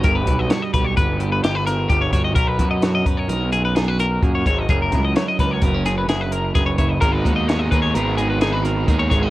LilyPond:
<<
  \new Staff \with { instrumentName = "Clean electric guitar" } { \time 5/4 \key b \major \tempo 4 = 129 ais'16 b'8 dis''16 cis''16 dis''16 b'16 cis''16 b'8 g'16 b'16 g'16 b'16 ais'8 g'16 cis''16 cis''16 dis''16 | ais'16 b'8 dis''16 cis''16 dis''16 b'16 cis''16 ais'8 gis'16 b'16 gis'16 b'16 ais'8 gis'16 cis''16 cis''16 dis''16 | gis'16 ais'8 dis''16 cis''16 dis''16 b'16 cis''16 ais'8 gis'16 b'16 gis'16 b'16 ais'8 gis'16 cis''16 cis''16 dis''16 | ais'16 b'8 dis''16 cis''16 dis''16 b'16 cis''16 ais'8 gis'16 b'16 gis'16 b'16 ais'8 gis'16 cis''16 cis''16 dis''16 | }
  \new Staff \with { instrumentName = "Clean electric guitar" } { \time 5/4 \key b \major << { <b g'>8 fis'4 g'8 b4 dis'16 fis'16 ais'8 g'8 fis'8 | ais'8 fis'4 ais'8 dis'4 dis'16 fis'16 ais'4. | ais'8 e'4 ais'8 b16 cis'8. e'8 ais'8 b'8 e'8 | ais'8 fis'4 ais'8 b4 dis'16 fis'16 ais'8 ais'8 dis'16 fis'16 | } \\ { g,4 g4. g,4. g,4 | b,4 fis4. fis,4. ais,8 gis,8 | fis,4 fis4. cis4. fis,4 | gis,4 gis4. dis4. gis,4 | } >> }
  \new Staff \with { instrumentName = "Overdriven electric guitar" } { \time 5/4 \key b \major r1 r4 | r1 r4 | r1 r4 | <gis b dis' gis'>8 <b dis' gis'>8 <gis b dis' gis'>8 <b dis' gis'>8 <gis b dis' gis'>8 <b dis' gis'>8 <gis b dis' gis'>4 <gis b dis' gis'>8 <b dis' gis'>8 | }
  \new Staff \with { instrumentName = "Picked electric bass" } { \clef bass \time 5/4 \key b \major g,,8 b,,8 r8 b,,8 g,,4 g,,4 g,,8 g,,8 | b,,8 fis,4 fis,8 b,,2 fis,8 gis,,8 | fis,,8 cis,8 r8 cis,8 fis,,4 fis,,4 fis,,8 fis,,8 | gis,,8 dis,4 dis,8 gis,,2 dis,8 gis,,8 | }
  \new DrumStaff \with { instrumentName = "Drums" } \drummode { \time 5/4 <hh bd>8 <hh bd>8 <hh sn>8 <hh bd>8 <hh bd>8 hh8 <hh sn>8 <hh sn>8 <hh bd>8 <hh bd sn>8 | <hh bd>8 <hh bd>8 <hh sn>8 <hh bd>8 hh8 hh8 <hh sn>8 <hh sn>8 <hh bd>8 <hh bd>8 | <hh bd>8 <hh bd sn>8 <hh sn>8 <hh bd sn>8 <hh bd>8 <hh sn>8 <hh sn>8 hh8 <hh bd sn>8 <hh bd>8 | <hh bd>8 <hh bd>8 <hh sn>8 <hh bd>8 hh8 hh8 <hh sn>8 <hh sn>8 <hh bd>8 <hh bd>8 | }
>>